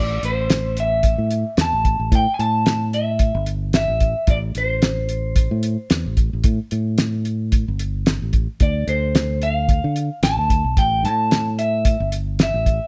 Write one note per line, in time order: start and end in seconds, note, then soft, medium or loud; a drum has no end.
0.00 0.20 A1 loud
0.00 0.25 D5 medium
0.23 1.15 A1 medium
0.23 0.80 C5 medium
0.23 closed hi-hat medium
0.50 snare loud
0.50 closed hi-hat medium
0.77 1.61 E5 medium
0.77 closed hi-hat medium
1.03 kick medium
1.03 closed hi-hat medium
1.18 1.43 A2 medium
1.31 closed hi-hat medium
1.57 1.71 E2 medium
1.57 2.15 A5 medium
1.57 snare loud
1.57 closed hi-hat medium
1.73 1.97 A1 medium
1.85 kick medium
1.85 closed hi-hat medium
1.99 2.11 A1 medium
2.12 2.25 A2 loud
2.12 2.33 G5 medium
2.12 kick loud
2.12 closed hi-hat medium
2.34 2.40 G#5 medium
2.39 3.31 A2 medium
2.39 2.94 A5 loud
2.39 closed hi-hat medium
2.66 snare loud
2.66 closed hi-hat medium
2.93 3.44 E5 medium
2.93 closed hi-hat medium
3.19 kick medium
3.19 closed hi-hat medium
3.35 3.85 G1 loud
3.46 closed hi-hat medium
3.73 4.30 E5 medium
3.73 snare loud
3.73 closed hi-hat medium
3.88 4.13 A1 medium
4.00 kick medium
4.00 closed hi-hat medium
4.27 4.52 A1 loud
4.27 4.37 D5 loud
4.27 kick loud
4.27 closed hi-hat medium
4.55 5.47 A1 medium
4.55 6.15 C5 medium
4.55 closed hi-hat medium
4.82 snare loud
4.82 closed hi-hat medium
5.09 closed hi-hat medium
5.36 kick medium
5.36 closed hi-hat medium
5.51 5.76 A2 medium
5.63 closed hi-hat medium
5.90 6.04 E2 medium
5.90 snare loud
5.90 closed hi-hat medium
6.06 6.30 A1 medium
6.17 kick medium
6.17 closed hi-hat medium
6.33 6.44 A1 medium
6.44 6.58 A2 loud
6.44 kick loud
6.44 closed hi-hat medium
6.71 7.64 A2 medium
6.71 closed hi-hat medium
6.98 snare loud
6.98 closed hi-hat medium
7.25 closed hi-hat medium
7.52 kick medium
7.52 closed hi-hat medium
7.68 8.18 G1 medium
7.79 closed hi-hat medium
8.06 snare loud
8.06 closed hi-hat medium
8.22 8.46 A1 medium
8.33 kick medium
8.33 closed hi-hat medium
8.60 8.85 D2 loud
8.60 8.87 D5 medium
8.60 kick medium
8.60 closed hi-hat medium
8.87 9.80 D2 medium
8.87 9.44 C5 medium
8.87 closed hi-hat medium
9.15 snare loud
9.15 closed hi-hat medium
9.42 10.23 F5 medium
9.42 closed hi-hat medium
9.69 kick medium
9.69 closed hi-hat medium
9.84 10.08 D3 medium
9.96 closed hi-hat medium
10.22 10.36 A1 medium
10.22 10.78 A5 loud
10.22 snare loud
10.22 closed hi-hat medium
10.37 10.62 D2 medium
10.50 kick medium
10.50 closed hi-hat medium
10.64 10.75 B1 medium
10.77 11.05 A1 loud
10.77 11.05 G5 loud
10.77 kick loud
10.77 closed hi-hat medium
11.03 11.96 A2 medium
11.03 11.55 A5 loud
11.03 closed hi-hat medium
11.31 snare loud
11.31 closed hi-hat medium
11.59 12.08 E5 medium
11.59 closed hi-hat medium
11.85 kick medium
11.85 closed hi-hat medium
12.00 12.50 G1 medium
12.12 closed hi-hat medium
12.39 12.87 E5 medium
12.39 snare loud
12.39 closed hi-hat medium
12.54 12.78 A1 medium
12.66 kick medium
12.66 closed hi-hat medium